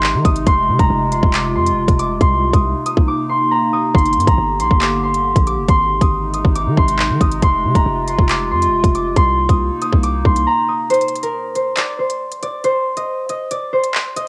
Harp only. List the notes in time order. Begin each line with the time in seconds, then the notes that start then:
Already playing: C6 D6
0.25 D#6
0.47 C6
0.79 A#5
1.12 C6
1.34 D6
1.55 C6
1.99 D6
2.21 C6
2.53 D#6
2.86 D#6
3.08 D6
3.29 C6
3.51 A#5
3.73 D#6
3.95 C6
4.27 A#5
4.60 C6
4.82 D6
5.03 C6
5.47 D6
5.69 C6
6.01 D#6
6.34 D#6
6.55 D6
6.77 C6
7.21 D#6
7.42 C6
7.75 A#5
8.08 C6
8.29 D6
8.51 C6
8.95 D6
9.16 C6
9.49 D#6
9.82 D#6
10.03 D6
10.25 C6
10.47 A#5
10.68 D#6
10.90 C5
11.23 A#4
11.55 C5
11.77 D5
11.99 C5
12.43 D5
12.64 C5
12.97 D#5
13.29 D#5
13.51 D5
13.73 C5
14.16 D#5